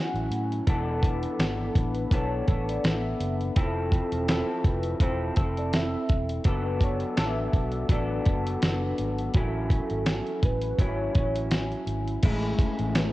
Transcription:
Already playing: F#3 C#4 E4 A4 F#5
0.14 A1, closed hi-hat
0.30 A2, closed hi-hat
0.52 closed hi-hat
0.67 E1 E3 B3 D4 A4, kick, closed hi-hat
1.03 kick, closed hi-hat
1.23 closed hi-hat
1.39 G#1, snare, closed hi-hat
1.75 A1 B4, kick, closed hi-hat
1.95 closed hi-hat
2.11 B1 E3 B3 D4 A4 C#5, kick, closed hi-hat
2.48 A1 B3 D4 A4, kick, closed hi-hat
2.69 D5, closed hi-hat
2.84 A1 E5, snare, closed hi-hat
3.20 F#1, closed hi-hat
3.41 closed hi-hat
3.56 F1 F3 C4 E4 A4, kick, closed hi-hat
3.92 kick, closed hi-hat
4.12 E1, closed hi-hat
4.28 F3 C4 E4 A4, snare, closed hi-hat
4.64 F1 B4, kick, closed hi-hat
4.83 closed hi-hat
5.00 E1 F3 C4 E4 A4 C5, kick, closed hi-hat
5.36 F1 C4 E4 A4, kick, closed hi-hat
5.57 D5, closed hi-hat
5.73 E5, snare, closed hi-hat
6.09 E1, kick, closed hi-hat
6.29 closed hi-hat
6.44 F#1 F#3 B3 D4 A4 B4, kick, closed hi-hat
6.81 C#5, kick, closed hi-hat
7.00 closed hi-hat
7.17 A1 F#3 B3 D4 A4 E5, snare, closed hi-hat
7.53 B1, kick, closed hi-hat
7.72 closed hi-hat
7.89 A1 F#3 B3 D4 A4 D5, kick, closed hi-hat
8.25 F#1, kick, closed hi-hat
8.47 closed hi-hat
8.62 F#1, snare, closed hi-hat
8.98 G#1, closed hi-hat
9.18 closed hi-hat
9.34 A1 F#3 C#4 E4 A4, kick, closed hi-hat
9.70 kick, closed hi-hat
9.90 G#1, closed hi-hat
10.06 snare, closed hi-hat
10.27 closed hi-hat
10.43 A1 B4, kick, closed hi-hat
10.61 closed hi-hat
10.78 G#1 F#3 C#4 E4 C#5, kick, closed hi-hat
11.15 A1 F#3 C#4 E4, kick, closed hi-hat
11.36 closed hi-hat
11.51 snare, closed hi-hat
11.72 closed hi-hat
11.87 G#1, closed hi-hat
12.08 closed hi-hat
12.23 A1 A2 G#3 C#4 E4, kick, closed hi-hat, crash
12.59 kick, closed hi-hat
12.79 A1, closed hi-hat
12.95 B4, snare, clap, closed hi-hat

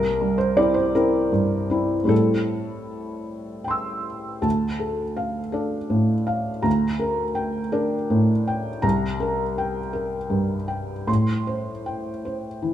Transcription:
Already playing: C2 A#4
0.21 G3
0.38 C5
0.57 C4 E4 D5
0.74 C5
0.95 C4 E4 A#4
1.32 G2
1.70 C4 E4
2.04 A2 G3 C4 E4
2.09 A4
3.64 G5 C6
3.71 E6
4.42 D2 A5
4.79 A4
5.17 F5
5.52 D4 A4
5.90 A2
6.27 F5
6.62 D2 A#5
7.00 A#4
7.35 G5
7.72 D4 A#4
8.10 A2
8.48 G5
8.82 C2 A#5
9.20 A#4
9.58 G5
9.93 A#4
10.30 G2
10.68 G5
11.07 A2 C6
11.47 C5
11.86 G5
12.25 C5
12.62 E3

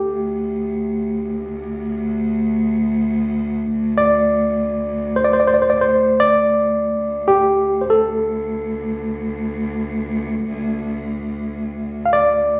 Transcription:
Already playing: G4
0.05 D2
3.98 D5
5.16 C5
5.24 D5
5.33 C5
5.40 D5
5.47 C5
5.54 D5
5.62 C5
5.70 D5
5.81 C5
6.20 D5
6.98 D2
7.28 G4
7.81 C5
7.90 A4
12.06 F5
12.13 D5

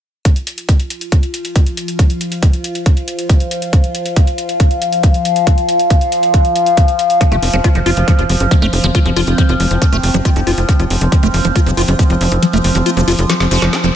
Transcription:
0.25 F3 F4, kick, closed hi-hat
0.36 closed hi-hat
0.47 closed hi-hat
0.58 closed hi-hat
0.69 kick, closed hi-hat
0.80 closed hi-hat
0.90 closed hi-hat
1.01 closed hi-hat
1.12 kick, closed hi-hat
1.23 closed hi-hat
1.34 closed hi-hat
1.45 closed hi-hat
1.56 kick, closed hi-hat
1.66 closed hi-hat
1.77 closed hi-hat
1.88 closed hi-hat
1.99 kick, closed hi-hat
2.10 closed hi-hat
2.21 closed hi-hat
2.32 closed hi-hat
2.43 kick, closed hi-hat
2.53 closed hi-hat
2.64 closed hi-hat
2.75 closed hi-hat
2.86 kick, closed hi-hat
2.97 closed hi-hat
3.08 closed hi-hat
3.19 closed hi-hat
3.29 kick, closed hi-hat
3.40 closed hi-hat
3.51 closed hi-hat
3.62 closed hi-hat
3.73 kick, closed hi-hat
3.84 closed hi-hat
3.95 closed hi-hat
4.06 closed hi-hat
4.16 kick, closed hi-hat
4.27 closed hi-hat
4.38 closed hi-hat
4.49 closed hi-hat
4.60 kick, closed hi-hat
4.71 closed hi-hat
4.82 closed hi-hat
4.92 closed hi-hat
5.03 kick, closed hi-hat
5.14 closed hi-hat
5.25 closed hi-hat
5.36 closed hi-hat
5.47 kick, closed hi-hat
5.58 closed hi-hat
5.69 closed hi-hat
5.79 closed hi-hat
5.90 kick, closed hi-hat
6.01 closed hi-hat
6.12 closed hi-hat
6.23 closed hi-hat
6.34 kick, closed hi-hat
6.45 closed hi-hat
6.56 closed hi-hat
6.66 closed hi-hat
6.77 kick, closed hi-hat
6.88 closed hi-hat
6.99 closed hi-hat
7.10 closed hi-hat
7.21 F3 C4, kick, closed hi-hat
7.32 F1 A3, closed hi-hat
7.43 F1, open hi-hat
7.53 F1 F3, closed hi-hat
7.64 F4, kick, closed hi-hat
7.75 F1 F3, closed hi-hat
7.86 F1 F4, open hi-hat
7.97 F1, closed hi-hat
8.08 F3, kick, closed hi-hat
8.19 F1, closed hi-hat
8.29 F1, open hi-hat
8.40 F#1, closed hi-hat
8.51 F3, kick, closed hi-hat
8.62 F1 A3, closed hi-hat
8.73 F1, open hi-hat
8.84 F1 F3, closed hi-hat
8.95 F4, kick, closed hi-hat
9.06 F1 F3, closed hi-hat
9.16 F1 F4, open hi-hat
9.27 F1, closed hi-hat
9.38 F3, kick, closed hi-hat
9.49 F1, closed hi-hat
9.60 F1, open hi-hat
9.71 F1, closed hi-hat
9.82 F3, kick, closed hi-hat
9.93 F1 A3, closed hi-hat
10.03 F1, open hi-hat
10.14 F#1 F3, closed hi-hat
10.25 F4, kick, closed hi-hat
10.36 F1 F3, closed hi-hat
10.47 F1 F4, open hi-hat
10.58 F1, closed hi-hat
10.69 F3, kick, closed hi-hat
10.79 F1, closed hi-hat
10.90 F1, open hi-hat
11.01 F1, closed hi-hat
11.12 F3, kick, closed hi-hat
11.23 F1 A3, closed hi-hat
11.34 F1, open hi-hat
11.45 F1 F3, closed hi-hat
11.56 F4, kick, closed hi-hat
11.66 F1 F3, closed hi-hat
11.77 F1 F4, open hi-hat
11.88 F#1, closed hi-hat
11.99 F3, kick, closed hi-hat
12.10 F1, closed hi-hat
12.21 F1, open hi-hat
12.32 F1, closed hi-hat
12.43 F3, closed hi-hat
12.53 F1 A3, closed hi-hat
12.64 F1, open hi-hat
12.75 F1 F3, closed hi-hat
12.86 F4, closed hi-hat
12.97 F1 F3, closed hi-hat
13.08 F1 F4, open hi-hat
13.19 F1, closed hi-hat
13.29 F3, snare, closed hi-hat
13.40 F1, snare, closed hi-hat
13.51 F1 F3, open hi-hat
13.62 F1, snare, closed hi-hat
13.73 F4, snare, closed hi-hat
13.84 F1 F3, closed hi-hat

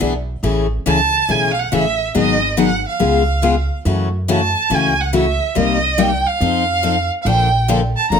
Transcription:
0.00 B1 E3 B3 D4 G#4
0.43 A1 C#3 E3 A3 C#4 G#4
0.86 C#2 C#3 E3 A3 C#4 G#4 A5
1.29 B1 C#3 E3 A3 C#4 G#4 G#5
1.53 F5
1.59 F#5
1.72 A1 C#3 E3 A3 C#4 G#4 E5
2.15 G#1 D#3 F#3 B3 D#4 G#4 D#5
2.57 D#3 F#3 B3 D#4 G#4 F#5
2.89 F5
2.99 C#2 C#3 G#3 B3 F4 G#4
3.42 C#3 G#3 B3 F4 G#4
3.85 F#2 C#3 E3 A3 C#4 F#4
4.28 C#3 E3 A3 C#4 F#4 A5
4.70 C#2 C#3 E3 A3 C#4 F#4
4.75 G#5
5.01 F#5
5.13 C#3 E3 A3 C#4 F#4 E5
5.55 C2 C3 G3 A#3 D#4 G4 D#5
5.98 C3 G3 A#3 D#4 G4 G5
6.27 F5
6.40 F2 F3 C4 D#4 A4
6.83 F3 C4 D#4 A4
7.22 A#1 D3 F3 F5
7.26 A#3 D4 A4 G5
7.68 D3 F3 A#3 D4 A4
7.96 A5
8.10 F1 D3 F3 A#3 D4 A4 A#5

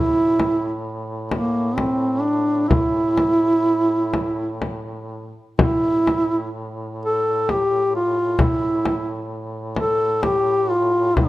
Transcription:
Already playing: A2 E4
0.40 frame drum
1.32 A#3, frame drum
1.75 C4, frame drum
2.21 D4
2.68 E4, frame drum
3.18 frame drum
4.14 frame drum
4.62 frame drum
5.59 A2 E4, frame drum
6.07 frame drum
7.05 A4
7.49 G4, frame drum
7.96 F4
8.39 E4, frame drum
8.85 frame drum
9.76 A4, frame drum
10.23 G4, frame drum
10.70 F4
11.17 C4, frame drum

